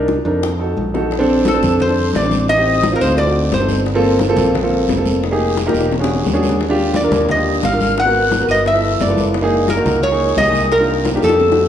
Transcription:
Already playing: C2 D4 D#4 A#4
0.08 high bongo, high conga
0.25 F2 D4 D#4 A#4, high bongo
0.42 high bongo, high conga
0.59 D#4 F#4 A4, high conga
0.77 A#1, high conga
0.94 D#4 F#4 A4, low bongo, high conga
1.11 high bongo, high conga, long guiro
1.19 C4 D4 A4
1.29 high conga
1.45 A4 A5, high bongo, high conga, short guiro
1.53 C4 D4 A4
1.63 F2, high conga, low conga, short guiro
1.80 C5 C6, high bongo, high conga, low conga, long guiro
1.88 C4 D4 A4
1.96 high conga
2.13 A1 D5 D6, high bongo, low bongo, high conga, short guiro
2.23 C4 D4 C5
2.31 high conga, short guiro
2.48 D#5 D#6, high bongo, high conga, long guiro
2.57 C4 D#4 G4
2.67 high bongo
2.83 high bongo, high conga, short guiro
2.92 C4 D#4 F4 A#4
2.97 A#5 C6
3.01 D2 C5, high bongo, short guiro
3.17 D5 D6, high bongo, high conga, long guiro
3.26 C4 D#4 F#4
3.35 high bongo, high conga
3.52 G1 C5 C6, high bongo, low bongo, high conga, short guiro
3.60 C4 D#4 A4
3.69 high conga, short guiro
3.86 high bongo, long guiro
3.94 A#3 C4 F4 A4
4.03 high conga
4.19 high bongo, high conga, short guiro
4.29 A#3 C4 F4 A4
4.37 A#1, high conga, low conga, short guiro
4.55 high bongo, high conga, low conga, long guiro
4.63 A#3 C4 F4 A4
4.71 high conga
4.88 F1, high bongo, low bongo, high conga, short guiro
4.96 A#3 C4 F4 A4
5.06 high conga, short guiro
5.23 high bongo, high conga, long guiro
5.31 A#3 D#4 G4 G#4
5.40 high bongo, high conga
5.57 high bongo, high conga, short guiro
5.66 A#3 D#4 G4 A#4, high bongo
5.74 E1, short guiro
5.81 high bongo
5.91 low bongo, high conga, long guiro
5.99 C#4 D4 F#4 G#4
6.04 low bongo
6.09 high conga
6.15 low bongo
6.25 D#2, low bongo, high conga, short guiro
6.33 C#4 D4 F#4 G#4
6.43 high conga, short guiro
6.49 low bongo
6.60 high bongo, high conga, long guiro
6.69 D4 F4 G4
6.77 high conga
6.94 D5 D6, high bongo, high conga, short guiro
7.03 D4 F4 A#4
7.11 D#2, high conga, low conga, short guiro
7.29 D#5 D#6, high bongo, high conga, low conga, long guiro
7.36 D4 F4 G4
7.45 high conga
7.63 G#1 F5 F6, high bongo, low bongo, high conga, short guiro
7.72 D4 F4 A#4
7.80 high conga, short guiro
7.97 F#5 F#6, high bongo, high conga, long guiro
8.05 B3 F#4 A#4
8.15 high bongo, high conga
8.31 high bongo, high conga, short guiro
8.40 B3 F#4 A#4
8.48 G1 D#5 D#6, high bongo, short guiro
8.66 E5 E6, high bongo, high conga, long guiro
8.74 B3 E4 F4 A4
8.83 high bongo, high conga
9.00 F#1 D5 D6, high bongo, low bongo, high conga, short guiro
9.08 B3 E4 F4 A4
9.17 high conga, short guiro
9.34 high bongo, high conga, long guiro
9.42 A#3 D#4 G#4
9.52 high conga
9.68 A#4 A#5, high bongo, high conga, short guiro
9.76 A#3 D#4 F#4
9.86 C#2, high conga, low conga, short guiro
10.03 C#5 C#6, high bongo, high conga, long guiro
10.11 A#3 D#4 G#4
10.20 high conga
10.37 C2 D#5 D#6, high bongo, low bongo, high conga, short guiro
10.45 A#3 D#4 G#4
10.53 high conga, short guiro
10.72 A#4 A#5, high bongo, long guiro
10.79 A#3 D4 D#4 F4
10.88 high bongo
11.05 high bongo, high conga, short guiro
11.14 A#3 D4 D#4 G4, high bongo
11.22 F2 A4 A5, short guiro
11.29 high bongo
11.40 low bongo, high conga, long guiro
11.48 A3 D#4 F#4
11.52 high bongo
11.57 high conga

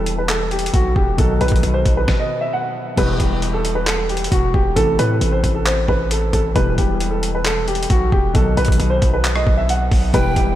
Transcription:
Already playing: E1 B2 E3 G3 E4 G4 A4
0.06 closed hi-hat
0.18 B4
0.29 A4, clap, closed hi-hat
0.51 G4, closed hi-hat
0.59 closed hi-hat
0.66 closed hi-hat
0.74 B1 F#4, kick, closed hi-hat
0.96 E1 G4, kick
1.17 B1 B2 D#3 F#3 D#4 F#4 A4, kick, closed hi-hat
1.41 B1 B4, closed hi-hat
1.48 B1, kick, closed hi-hat
1.56 closed hi-hat
1.63 B1, closed hi-hat
1.74 C5
1.85 B1, kick, closed hi-hat
1.97 B4
2.08 kick, snare
2.19 D#5
2.41 E5
2.53 F#5
2.96 E1 B2 E3 G3 E4 G4 B4, kick, closed hi-hat, crash
3.20 E1 G4, kick, closed hi-hat
3.42 closed hi-hat
3.54 A4
3.65 closed hi-hat
3.75 B4
3.87 A4, clap, closed hi-hat
4.09 G4, closed hi-hat
4.17 closed hi-hat
4.24 closed hi-hat
4.31 E1 F#4, kick, closed hi-hat
4.54 E1 G4, kick
4.75 A1 C3 E3 A3 E4 A4, kick, closed hi-hat
4.99 A2 B4, closed hi-hat
5.21 A1, closed hi-hat
5.32 C5
5.44 A1, kick, closed hi-hat
5.55 A4
5.66 C5, clap, closed hi-hat
5.88 A1 B4, kick
6.11 A4, closed hi-hat
6.33 A1 A4, kick, closed hi-hat
6.54 E1 B2 E3 G3 E4 G4 B4, kick, closed hi-hat
6.78 E1 G4, kick, closed hi-hat
7.00 closed hi-hat
7.11 A4
7.23 closed hi-hat
7.35 B4
7.45 A4, clap, closed hi-hat
7.68 G4, closed hi-hat
7.75 closed hi-hat
7.83 closed hi-hat
7.90 B1 F#4, kick, closed hi-hat
8.12 E1 G4, kick
8.33 B1 B2 D#3 F#3 D#4 F#4 A4, kick, closed hi-hat
8.57 B1 B4, closed hi-hat
8.65 B1, kick, closed hi-hat
8.72 closed hi-hat
8.80 B1, closed hi-hat
8.90 C5
9.02 B1, kick, closed hi-hat
9.14 B4
9.24 clap, closed hi-hat
9.36 D#5, cross-stick
9.47 B1, kick
9.57 E5
9.69 F#5, closed hi-hat
9.91 B1, kick, open hi-hat
10.13 E1 B2 E3 G3 E4 G4 B4 G5, kick, closed hi-hat
10.36 E1 G4, kick, closed hi-hat

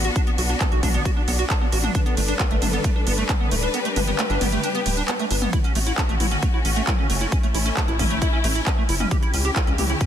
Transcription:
Already playing: B3 D4 F#4
0.05 F#4, closed hi-hat
0.16 D4, kick, closed hi-hat, ride
0.27 B3, closed hi-hat
0.38 B1 F#4, open hi-hat, ride
0.49 D4, closed hi-hat
0.61 B3, kick, clap, closed hi-hat, ride
0.72 B1 F#4, closed hi-hat
0.83 B1 D4, kick, open hi-hat, mid tom, ride
0.94 B3, closed hi-hat
1.05 F#4, kick, closed hi-hat, ride
1.17 D4
1.28 B1 B3, open hi-hat, ride
1.39 F#4, closed hi-hat
1.50 D4, kick, clap, closed hi-hat, ride
1.61 B3
1.72 A1 F#4, open hi-hat, ride
1.84 D4, closed hi-hat, mid tom
1.95 G3 D4 A4 B4, kick, closed hi-hat, ride
2.06 B3, closed hi-hat
2.17 G1 A3, open hi-hat, ride
2.28 D4, closed hi-hat
2.40 B3, kick, clap, closed hi-hat, ride
2.51 G1 A3, closed hi-hat
2.62 G1 D4, open hi-hat, mid tom, ride
2.73 B3, closed hi-hat
2.84 A3, kick, closed hi-hat, ride
2.96 D4
3.07 G1 B3, open hi-hat, ride
3.18 A3, closed hi-hat
3.29 D4, kick, clap, closed hi-hat, mid tom, ride
3.40 B3
3.51 D1 A3, open hi-hat, ride
3.63 D4, closed hi-hat
3.74 B3 G4, closed hi-hat, ride
3.85 A3, closed hi-hat
3.96 G1 D4, open hi-hat, mid tom, ride
4.07 B3, closed hi-hat
4.19 A3, clap, closed hi-hat, ride
4.30 G1 D4, closed hi-hat
4.41 G1 B3, open hi-hat, mid tom, ride
4.52 A3, closed hi-hat
4.63 D4, closed hi-hat, ride
4.75 B3, closed hi-hat
4.86 D1 A3, open hi-hat, ride
4.97 D4, closed hi-hat
5.08 B3, clap, closed hi-hat, ride
5.19 A3, closed hi-hat
5.31 G1 D4, open hi-hat, ride
5.42 B3, closed hi-hat, mid tom
5.53 A3 C#4 E4 F#4, kick, closed hi-hat, ride
5.64 C#4, closed hi-hat
5.75 A1 A3, open hi-hat, ride
5.87 E4, closed hi-hat
5.98 C#4, kick, clap, closed hi-hat, ride
6.09 A1 A3, closed hi-hat
6.20 A1 E4, open hi-hat, mid tom, ride
6.31 C#4, closed hi-hat
6.43 A3, kick, closed hi-hat, ride
6.54 E4
6.65 A1 C#4, open hi-hat, ride
6.76 A3, closed hi-hat
6.87 E4, kick, clap, closed hi-hat, mid tom, ride
6.99 C#4
7.10 F#1 A3, open hi-hat, ride
7.21 E4, closed hi-hat
7.32 C#4 E4, kick, closed hi-hat, ride
7.43 A3, closed hi-hat
7.54 A1 E4, open hi-hat, ride
7.66 C#4, closed hi-hat
7.77 A3, kick, clap, closed hi-hat
7.88 A1 E4, closed hi-hat
7.99 A1 C#4, kick, open hi-hat, mid tom, ride
8.11 A3, closed hi-hat
8.22 E4, kick, closed hi-hat, ride
8.33 C#4
8.44 A1 A3, open hi-hat, ride
8.55 E4, closed hi-hat
8.67 C#4, kick, clap, closed hi-hat, ride
8.78 A3
8.89 F#1 E4, open hi-hat, ride
9.00 C#4, closed hi-hat, mid tom
9.11 C#3 C#4 E4 G4, kick, closed hi-hat, ride
9.22 E4, closed hi-hat
9.34 C#2 C#4, open hi-hat, ride
9.45 G4, closed hi-hat
9.56 E4, kick, clap, closed hi-hat, ride
9.67 C#2 C#4, closed hi-hat
9.78 C#2 G4, open hi-hat, mid tom, ride
9.90 E4, closed hi-hat
10.01 C#4, kick, closed hi-hat, ride

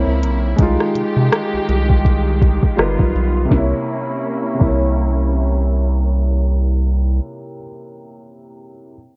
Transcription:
Already playing: C#3 A#3 C4 E4 C#5
0.07 C#2
0.22 B1, closed hi-hat
0.56 C2 D#3 G#3 D#4 G4, kick, closed hi-hat
0.62 F4
0.80 cross-stick
0.95 C3, closed hi-hat
1.16 C3
1.32 cross-stick, closed hi-hat
1.53 C2
1.69 C2, closed hi-hat
1.90 kick
2.05 kick, closed hi-hat
2.42 kick, closed hi-hat
2.63 kick
2.77 G1 G3 B3 D#4 F4 A#4 B4, cross-stick, closed hi-hat
2.99 B1, kick
3.15 B1, closed hi-hat
3.45 C3
3.50 C2 A#3 C#4 E4, kick, snare
3.54 E4
3.58 C#5
4.55 C3
4.59 C2 A#3, kick, crash
4.63 E4
4.68 C#5

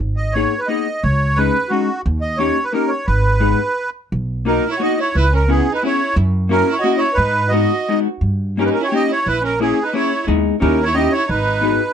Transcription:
0.00 G#1
0.17 D#5
0.32 A#3 B3 D#4 C#5
0.37 G#4
0.58 B4
0.67 A#3 B3 D#4 G#4 D#5
1.03 C#2 C#5
1.36 G#3 C#4 D#4 G#4 B4
1.69 G#3 C#4 D#4 F#4 G#4
2.06 D#2
2.21 D#5
2.37 A#3 C#4 D#4 G4 C#5
2.64 B4
2.72 A#3 C#4 D#4 G4 A#4
2.88 C#5
3.06 G#1 B4
3.40 G#3 B3 D#4 G#4
4.12 B1
4.45 A#3 B3 D#4 F#4 A#4
4.68 E4 C#5
4.79 A#3 B3 D#4 F#4 D#5
4.99 E4 C#5
5.15 C#2 E4 B4
5.33 C#4 A#4
5.48 B3 C#4 E4 G#4
5.72 D#4 B4
5.83 B3 C#4 E4 G#4 C#5
6.16 F#2
6.49 A#3 C#4 E4 F#4 A#4
6.69 E4 C#5
6.80 A#3 F#4 D#5
6.85 C#4 E4 F#4
6.97 E4 C#5
7.13 D#4 B4
7.18 G#2
7.48 G#3 B3 F#4 D#5
7.53 D#4 F#4
7.89 G#3 B3 D#4 F#4
8.21 G2
8.57 A#3 C#4 D#4 G4 A#4
8.65 B4
8.70 C#4 A#4
8.81 E4 C#5
8.90 A#3 C#4 D#4 G4
8.95 D#5
9.08 E4 C#5
9.26 A#1 E4 B4
9.44 C#4 A#4
9.60 A#3 C#4 E4 G#4
9.82 D#4 B4
9.93 A#3 C#4 E4 G#4 C#5
10.27 D#2 G#3 B3 D#4 G#4
10.60 D#2 C#4 D#4 E4 G4 A#4
10.83 E4 C#5
10.94 C#4 D#4 E4 G4 D#5
11.12 C#5
11.16 E4
11.29 G#1 D#4 B4
11.61 B3 D#4 F#4 G#4

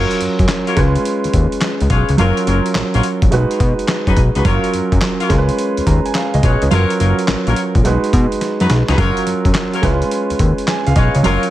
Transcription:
Already playing: F#3 C#4 F4 F#4 A#4 C#5
0.11 closed hi-hat
0.21 F#2, closed hi-hat
0.39 F#2, kick, closed hi-hat
0.48 snare, clap, closed hi-hat
0.67 F4 F#4 A#4 C#5, closed hi-hat
0.76 C#2 G#3 C#4 F4 B4, kick, snare, closed hi-hat
0.95 closed hi-hat
1.05 closed hi-hat
1.24 D#2, closed hi-hat
1.33 D#2, kick, closed hi-hat
1.52 closed hi-hat
1.61 snare, clap, closed hi-hat
1.80 C#2, closed hi-hat
1.90 B1 F4 G#4 B4 C#5, kick, closed hi-hat
2.09 C#2, closed hi-hat
2.17 F#1 F#3 C#4 F4 F#4 A#4 C#5, closed hi-hat
2.37 closed hi-hat
2.46 F#1 F4 F#4 A#4 C#5, closed hi-hat
2.66 closed hi-hat
2.75 A#1, snare, clap, closed hi-hat
2.94 A#1 F4 F#4 A#4 C#5, closed hi-hat
3.03 closed hi-hat
3.22 A#1, kick, closed hi-hat
3.31 B1 G#3 D#4 F#4 B4, closed hi-hat
3.51 closed hi-hat
3.60 B2, kick, closed hi-hat
3.79 closed hi-hat
3.88 snare, clap, closed hi-hat
4.07 F#2 D#4 F#4 G#4 B4, kick, closed hi-hat
4.17 B1, kick, closed hi-hat
4.35 C#2 D#4 F#4 G#4 B4, closed hi-hat
4.44 F#1 F#3 C#4 F4 F#4 A#4 C#5, kick, closed hi-hat
4.64 closed hi-hat
4.74 F#2, closed hi-hat
4.92 F#2, kick, closed hi-hat
5.01 snare, clap, closed hi-hat
5.20 F4 F#4 A#4 C#5, closed hi-hat
5.29 C#2 G#3 C#4 F4 A#4, kick, snare, closed hi-hat
5.38 B4
5.49 closed hi-hat
5.58 closed hi-hat
5.77 D#2, closed hi-hat
5.87 D#2 A#5, kick, closed hi-hat
6.06 G#5, closed hi-hat
6.15 F5, snare, clap, closed hi-hat
6.34 C#2 D#5, closed hi-hat
6.43 B1 F4 G#4 B4 C#5, kick, closed hi-hat
6.62 C#2 B4, closed hi-hat
6.71 F#1 F#3 C#4 F4 F#4 A#4 C#5, closed hi-hat
6.90 closed hi-hat
7.00 F#1 F4 F#4 A#4 C#5, closed hi-hat
7.19 closed hi-hat
7.28 A#1, snare, clap, closed hi-hat
7.47 A#1 F4 F#4 A#4 C#5, closed hi-hat
7.56 closed hi-hat
7.75 A#1, kick, closed hi-hat
7.84 B1 G#3 D#4 F#4 B4, closed hi-hat
8.04 closed hi-hat
8.13 B2, kick, closed hi-hat
8.32 closed hi-hat
8.41 snare, closed hi-hat
8.60 F#2 D#4 F#4 G#4 B4, closed hi-hat
8.70 B1, snare, closed hi-hat
8.88 C#2 D#4 F#4 G#4 B4, snare, closed hi-hat
8.97 F#3 C#4 F4 F#4 A#4 C#5, kick, closed hi-hat
9.17 closed hi-hat
9.27 F#2, closed hi-hat
9.45 F#2, kick, closed hi-hat
9.55 snare, clap, closed hi-hat
9.73 F4 F#4 A#4 C#5, closed hi-hat
9.82 C#2 G#3 C#4 E4 B4, kick, snare, closed hi-hat
9.90 F4
10.02 closed hi-hat
10.11 closed hi-hat
10.30 D#2, closed hi-hat
10.39 D#2, kick, closed hi-hat
10.58 closed hi-hat
10.68 G#5, snare, clap, closed hi-hat
10.87 C#2 F5, closed hi-hat
10.96 B1 F4 G#4 B4 C#5 D#5, kick, closed hi-hat
11.15 C#2 C#5, closed hi-hat
11.23 F#1 F#3 C#4 F4 F#4 A#4 C#5, closed hi-hat
11.43 closed hi-hat

